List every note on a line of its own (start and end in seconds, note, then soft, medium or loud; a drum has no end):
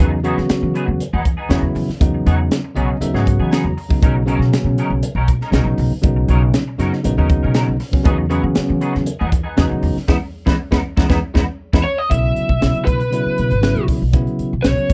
0.00 0.33 E2 medium
0.00 0.18 C#3 medium
0.00 0.12 F#3 medium
0.00 0.18 F#3 medium
0.00 0.11 B3 medium
0.00 0.18 B3 medium
0.00 0.11 D#4 medium
0.00 0.19 D#4 medium
0.00 0.11 G#4 medium
0.12 muted clean electric guitar stroke soft
0.24 1.01 C#3 medium
0.24 1.01 F#3 medium
0.24 0.37 F#3 medium
0.24 1.02 B3 medium
0.24 0.37 B3 medium
0.24 0.37 D#4 medium
0.24 1.02 F#4 medium
0.24 0.37 G#4 loud
0.24 closed hi-hat medium
0.38 0.48 E3 medium
0.38 muted clean electric guitar stroke soft
0.38 snare soft
0.49 muted upright bass stroke soft
0.49 muted clean electric guitar stroke soft
0.49 snare loud
0.49 closed hi-hat medium
0.63 0.73 E3 medium
0.63 muted clean electric guitar stroke soft
0.75 0.88 F#3 medium
0.75 0.87 B3 medium
0.75 0.86 D#4 medium
0.75 0.86 G#4 medium
0.75 closed hi-hat medium
0.87 0.98 E2 medium
0.87 muted clean electric guitar stroke soft
1.00 closed hi-hat medium
1.13 1.35 E2 medium
1.13 1.24 F#3 medium
1.13 1.24 B3 medium
1.13 1.24 D#4 medium
1.13 1.24 G#4 medium
1.25 muted clean electric guitar stroke soft
1.25 kick medium
1.25 closed hi-hat medium
1.37 1.49 B3 soft
1.37 1.49 D#4 soft
1.37 1.49 G#4 medium
1.49 1.61 E2 medium
1.49 1.89 C#3 medium
1.49 1.63 F#3 medium
1.49 1.89 F#3 medium
1.49 1.62 B3 medium
1.49 1.90 B3 medium
1.49 1.62 D#4 medium
1.49 1.90 E4 medium
1.49 1.62 G#4 medium
1.49 snare loud
1.49 closed hi-hat medium
1.62 1.73 E2 medium
1.62 muted clean electric guitar stroke soft
1.75 1.86 E2 medium
1.75 muted clean electric guitar stroke soft
1.75 open hi-hat medium
1.89 muted upright bass stroke soft
1.89 snare soft
2.00 2.23 E2 medium
2.00 2.59 C#3 medium
2.00 2.59 F#3 medium
2.00 2.59 B3 medium
2.00 2.59 D#4 medium
2.00 kick loud
2.00 closed hi-hat medium
2.14 muted clean electric guitar stroke soft
2.26 2.48 E2 loud
2.26 2.39 F#3 medium
2.26 2.39 B3 medium
2.26 2.38 D#4 loud
2.26 2.38 G#4 medium
2.26 closed hi-hat medium
2.39 muted clean electric guitar stroke soft
2.51 muted clean electric guitar stroke soft
2.51 snare loud
2.51 closed hi-hat medium
2.64 muted clean electric guitar stroke soft
2.75 2.87 B1 medium
2.75 2.95 C#3 medium
2.75 2.89 F#3 medium
2.75 2.96 F#3 medium
2.75 2.89 B3 medium
2.75 2.96 B3 medium
2.75 2.96 C#4 medium
2.75 2.89 D#4 medium
2.75 2.89 G#4 medium
2.75 2.99 D#5 medium
2.75 closed hi-hat medium
2.90 muted clean electric guitar stroke soft
3.00 3.12 D#2 medium
3.00 3.11 C#3 medium
3.00 3.11 F#3 medium
3.00 3.11 B3 medium
3.00 3.12 D#4 medium
3.00 3.25 E5 medium
3.00 closed hi-hat medium
3.14 3.36 G#2 medium
3.14 3.72 C#3 medium
3.14 3.72 F#3 medium
3.14 3.26 F#3 medium
3.14 3.72 B3 medium
3.14 3.27 B3 medium
3.14 3.27 D#4 medium
3.14 3.72 F#4 medium
3.14 3.27 G#4 medium
3.14 snare soft
3.26 3.50 F#5 medium
3.26 muted clean electric guitar stroke soft
3.26 kick medium
3.26 closed hi-hat soft
3.39 3.62 E3 medium
3.39 3.51 B3 soft
3.39 3.52 D#4 medium
3.39 3.52 G#4 medium
3.52 3.65 F#3 medium
3.52 3.65 B3 medium
3.52 3.65 D#4 medium
3.52 3.65 G#4 medium
3.52 3.64 G#5 medium
3.52 snare medium
3.52 closed hi-hat medium
3.64 3.75 E2 medium
3.64 3.99 A#5 medium
3.64 muted clean electric guitar stroke soft
3.77 muted clean electric guitar stroke soft
3.77 open hi-hat medium
3.89 3.99 C#3 medium
3.89 3.99 F#3 medium
3.89 3.99 B3 medium
3.89 4.00 D#4 medium
3.89 muted upright bass stroke soft
3.89 kick medium
4.02 4.36 B1 medium
4.02 4.22 C#3 medium
4.02 4.22 F#3 medium
4.02 4.16 F#3 medium
4.02 4.22 B3 medium
4.02 4.16 C#4 medium
4.02 4.16 D#4 medium
4.02 4.22 D#4 medium
4.02 4.15 A#4 medium
4.02 kick loud
4.02 closed hi-hat medium
4.16 muted clean electric guitar stroke soft
4.25 5.04 C#3 medium
4.25 5.04 F#3 medium
4.25 4.40 F#3 medium
4.25 5.05 B3 medium
4.25 5.05 C#4 medium
4.25 4.41 C#4 medium
4.25 4.41 D#4 medium
4.25 4.40 A#4 medium
4.25 closed hi-hat medium
4.39 4.50 B2 medium
4.39 muted clean electric guitar stroke soft
4.39 snare soft
4.52 muted upright bass stroke soft
4.52 muted clean electric guitar stroke soft
4.52 snare loud
4.52 closed hi-hat medium
4.64 4.76 B2 medium
4.64 muted clean electric guitar stroke soft
4.78 4.91 F#3 medium
4.78 4.91 C#4 medium
4.78 4.91 D#4 medium
4.78 4.91 A#4 medium
4.78 closed hi-hat medium
4.90 5.01 B1 medium
4.90 muted clean electric guitar stroke soft
5.03 closed hi-hat medium
5.15 5.37 B1 medium
5.15 5.28 F#3 medium
5.15 5.27 C#4 medium
5.15 5.28 D#4 medium
5.15 5.28 A#4 medium
5.28 muted clean electric guitar stroke soft
5.28 kick medium
5.28 closed hi-hat medium
5.41 5.53 C#4 soft
5.41 5.54 D#4 soft
5.41 5.54 A#4 medium
5.41 snare soft
5.51 5.64 B1 loud
5.51 5.91 C#3 medium
5.51 5.92 F#3 medium
5.51 5.67 F#3 medium
5.51 5.92 B3 medium
5.51 5.66 C#4 medium
5.51 5.93 D#4 loud
5.51 5.66 D#4 medium
5.51 5.66 A#4 medium
5.51 snare medium
5.51 closed hi-hat medium
5.65 5.76 B1 medium
5.65 muted clean electric guitar stroke soft
5.77 5.89 B1 medium
5.77 muted clean electric guitar stroke soft
5.77 open hi-hat medium
5.91 muted upright bass stroke soft
6.02 6.26 B1 medium
6.02 6.61 C#3 medium
6.02 6.61 F#3 medium
6.02 6.62 B3 medium
6.02 6.62 D#4 medium
6.02 kick medium
6.02 closed hi-hat medium
6.16 muted clean electric guitar stroke soft
6.28 6.51 B1 loud
6.28 6.42 F#3 medium
6.28 6.42 C#4 medium
6.28 6.42 D#4 loud
6.28 6.41 A#4 loud
6.28 closed hi-hat medium
6.42 muted clean electric guitar stroke soft
6.54 muted clean electric guitar stroke soft
6.54 snare loud
6.54 closed hi-hat medium
6.68 muted clean electric guitar stroke soft
6.78 6.90 F#2 medium
6.78 6.98 C#3 medium
6.78 6.99 F#3 medium
6.78 6.92 F#3 medium
6.78 6.99 B3 medium
6.78 6.92 C#4 medium
6.78 6.99 D#4 medium
6.78 6.92 D#4 medium
6.78 6.92 A#4 medium
6.78 snare soft
6.78 closed hi-hat medium
6.93 muted clean electric guitar stroke soft
6.93 snare soft
7.03 7.16 A#1 medium
7.03 7.14 C#3 medium
7.03 7.14 F#3 medium
7.03 7.15 B3 medium
7.03 7.15 D#4 medium
7.03 closed hi-hat medium
7.17 7.40 D#2 medium
7.17 7.75 C#3 medium
7.17 7.76 F#3 medium
7.17 7.27 F#3 medium
7.17 7.76 B3 medium
7.17 7.27 C#4 medium
7.17 7.28 D#4 medium
7.17 7.76 D#4 medium
7.17 7.28 A#4 medium
7.29 muted clean electric guitar stroke soft
7.29 kick medium
7.29 closed hi-hat soft
7.43 7.66 B2 medium
7.43 7.54 C#4 soft
7.43 7.54 D#4 soft
7.43 7.55 A#4 medium
7.54 7.68 F#3 medium
7.54 7.67 C#4 medium
7.54 7.67 D#4 medium
7.54 7.66 A#4 medium
7.54 snare medium
7.54 closed hi-hat medium
7.68 7.79 B1 medium
7.68 muted clean electric guitar stroke soft
7.80 muted clean electric guitar stroke soft
7.80 snare soft
7.80 open hi-hat medium
7.92 8.02 C#3 medium
7.92 8.02 F#3 medium
7.92 8.03 B3 medium
7.92 8.03 C#4 medium
7.92 muted upright bass stroke soft
7.92 kick medium
8.03 8.39 E2 loud
8.03 8.24 C#3 medium
8.03 8.24 F#3 medium
8.03 8.18 F#3 medium
8.03 8.25 B3 medium
8.03 8.18 B3 medium
8.03 8.25 D#4 medium
8.03 8.18 D#4 medium
8.03 8.17 G#4 medium
8.03 kick loud
8.03 closed hi-hat medium
8.18 muted clean electric guitar stroke soft
8.29 9.08 C#3 medium
8.29 8.43 F#3 medium
8.29 9.08 F#3 medium
8.29 9.08 B3 medium
8.29 8.42 B3 medium
8.29 9.09 C#4 medium
8.29 8.43 D#4 medium
8.29 8.42 G#4 loud
8.29 closed hi-hat medium
8.43 8.54 E3 medium
8.43 muted clean electric guitar stroke soft
8.55 muted clean electric guitar stroke soft
8.55 muted upright bass stroke soft
8.55 snare loud
8.55 closed hi-hat medium
8.69 8.80 E3 medium
8.69 muted clean electric guitar stroke soft
8.81 8.94 F#3 medium
8.81 8.94 B3 medium
8.81 8.94 D#4 medium
8.81 8.94 G#4 medium
8.81 closed hi-hat medium
8.95 9.06 E2 medium
8.95 muted clean electric guitar stroke soft
8.95 snare soft
9.06 closed hi-hat medium
9.19 9.43 E2 medium
9.19 9.30 F#3 medium
9.19 9.30 B3 medium
9.19 9.30 D#4 medium
9.19 9.30 G#4 medium
9.31 muted clean electric guitar stroke soft
9.31 kick medium
9.31 closed hi-hat medium
9.43 9.56 B3 soft
9.43 9.56 D#4 medium
9.43 9.57 G#4 medium
9.57 9.69 E2 medium
9.57 9.96 C#3 medium
9.57 9.70 F#3 medium
9.57 9.96 F#3 medium
9.57 9.69 B3 medium
9.57 9.97 B3 medium
9.57 9.69 D#4 medium
9.57 9.97 D#4 loud
9.57 9.68 G#4 medium
9.57 snare loud
9.57 closed hi-hat medium
9.70 9.82 E2 medium
9.70 muted clean electric guitar stroke soft
9.82 9.94 E2 medium
9.82 muted clean electric guitar stroke soft
9.82 open hi-hat medium
9.96 muted upright bass stroke soft
9.96 snare soft
10.08 10.18 E2 medium
10.08 10.17 E3 medium
10.08 10.17 G#3 medium
10.08 10.16 B3 medium
10.08 10.17 B3 medium
10.08 10.16 D#4 medium
10.08 10.16 E4 medium
10.08 kick medium
10.08 snare medium
10.46 10.56 E2 medium
10.46 10.54 E3 medium
10.46 10.54 G#3 medium
10.46 10.54 B3 medium
10.46 10.54 D#4 medium
10.46 10.54 E4 medium
10.46 kick medium
10.46 snare medium
10.71 10.81 E2 medium
10.71 10.79 E3 medium
10.71 10.79 G#3 medium
10.71 10.79 B3 medium
10.71 10.79 D#4 medium
10.71 10.80 E4 medium
10.71 kick medium
10.71 snare medium
10.97 11.06 E2 medium
10.97 11.05 E3 medium
10.97 11.05 G#3 medium
10.97 11.05 B3 medium
10.97 11.05 D#4 medium
10.97 11.05 E4 medium
10.97 kick medium
10.97 snare medium
11.09 11.19 E2 medium
11.09 11.18 E3 medium
11.09 11.18 G#3 medium
11.09 11.17 B3 loud
11.09 11.18 B3 loud
11.09 11.17 D#4 loud
11.09 11.18 E4 medium
11.09 kick medium
11.09 snare medium
11.34 11.44 E2 medium
11.34 11.43 E3 medium
11.34 11.43 G#3 medium
11.34 11.43 B3 medium
11.34 11.43 D#4 medium
11.34 11.43 E4 medium
11.34 kick medium
11.34 snare medium
11.73 11.82 E2 medium
11.73 11.81 E3 medium
11.73 11.81 G#3 medium
11.73 11.81 B3 medium
11.73 11.81 D#4 medium
11.73 11.81 E4 medium
11.73 kick medium
11.73 snare medium
11.84 11.98 C#5 medium
11.98 12.10 D#5 medium
12.10 12.33 B1 medium
12.10 12.49 C#3 medium
12.10 12.49 F#3 medium
12.10 12.50 B3 medium
12.10 12.50 E4 medium
12.10 12.86 E5 medium
12.10 kick medium
12.10 closed hi-hat medium
12.36 muted upright bass stroke soft
12.36 closed hi-hat soft
12.49 12.60 B1 medium
12.49 kick medium
12.60 12.73 B1 medium
12.60 13.00 C#3 medium
12.60 13.00 F#3 medium
12.60 13.00 B3 medium
12.60 13.01 E4 medium
12.60 snare loud
12.60 closed hi-hat medium
12.75 muted upright bass stroke soft
12.75 closed hi-hat soft
12.85 13.20 B2 medium
12.85 13.83 B4 medium
12.85 kick medium
12.85 closed hi-hat medium
13.00 closed hi-hat soft
13.11 13.50 C#3 medium
13.11 13.51 F#3 medium
13.11 13.51 B3 medium
13.11 13.52 E4 medium
13.11 closed hi-hat medium
13.26 muted upright bass stroke soft
13.38 13.50 B2 medium
13.38 closed hi-hat soft
13.51 13.73 G#1 medium
13.51 closed hi-hat soft
13.61 14.01 C#3 medium
13.61 14.01 F#3 medium
13.61 14.02 B3 medium
13.61 14.02 E4 medium
13.61 snare medium
13.61 closed hi-hat medium
13.76 13.98 B1 medium
13.76 closed hi-hat soft
13.88 kick medium
13.88 open hi-hat medium
14.02 14.24 B1 medium
14.13 14.52 C#3 medium
14.13 14.52 F#3 medium
14.13 14.53 B3 medium
14.13 14.53 E4 medium
14.13 kick loud
14.13 closed hi-hat medium
14.27 closed hi-hat soft
14.39 muted upright bass stroke soft
14.39 closed hi-hat soft
14.53 14.63 B1 medium
14.62 14.76 B1 medium
14.62 14.93 C#3 medium
14.62 14.93 F#3 medium
14.62 14.93 B3 medium
14.62 14.93 C#4 medium
14.62 14.93 C#5 medium
14.62 snare medium
14.62 closed hi-hat medium
14.78 muted upright bass stroke soft
14.78 closed hi-hat soft
14.90 14.93 B2 medium
14.90 kick medium
14.90 closed hi-hat medium